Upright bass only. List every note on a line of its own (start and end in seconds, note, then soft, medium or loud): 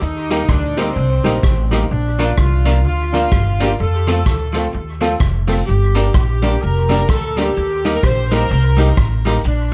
0.01 0.42 D#2 loud
0.49 0.89 D2 loud
0.96 1.21 C2 loud
1.26 1.41 A#1 medium
1.44 1.84 A1 loud
1.91 2.31 A#1 loud
2.38 2.86 C2 medium
2.86 3.25 D2 medium
3.32 3.72 G1 loud
3.80 4.26 F2 medium
4.26 4.66 D2 medium
4.74 5.14 D#2 medium
5.20 5.61 F1 medium
5.69 6.08 G1 loud
6.15 6.55 A#1 medium
6.64 7.03 F1 loud
7.09 7.49 D2 loud
7.57 7.96 D#2 medium
8.04 8.43 A#1 medium
8.51 8.90 C2 loud
8.97 9.37 A1 loud
9.45 9.74 A#1 loud